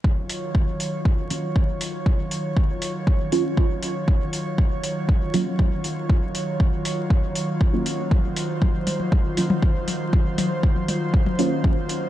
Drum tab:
HH |--o---o---o---o-|--o---o---o---o-|--o---o---o---o-|--o---o---o---o-|
T1 |----------------|----------------|----------------|----------------|
CG |----------------|----------------|----------------|----------------|
BD |o---o---o---o---|o---o---o---o---|o---o---o---o---|o---o---o---o---|

HH |--o---o---o---o-|--o---o---o---o-|
T1 |o---o--o---o--o-|--o--o---o--o---|
CG |------O-O--O----|------O---------|
BD |o---o---o---o---|o---o---o---o---|